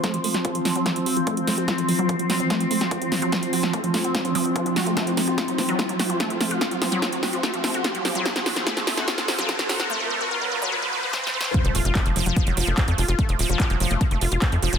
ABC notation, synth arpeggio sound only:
X:1
M:4/4
L:1/16
Q:1/4=146
K:F
V:1 name="Synth arpeggio sound" clef=bass
A, F, A, _G F F, F, _G, F, G, G F, A, F, A, G | F F, F, _G, F, G, _G F, A, F, A, G F F, F, G, | F, _G, _G F, A, F, A, G F F, F, F, F, F, G A, | A, F, A, _G F _G, F, G, F, G, G F, A, F, A, G |
F _G, F, G, F, G, _G F, A, F, A, G F G, F, G, | F, _G, _G F, A, F, A, G F G, F, G, F, G, G F, | A, F, A, _G F _G, F, G, F, G, F, F, C C A, F | F, A, F F A, F, F, F, F, _G, F, A, F, A, F F |
A, F, F, F, z _G, F, A, F, A, F F A, F, F, F, |]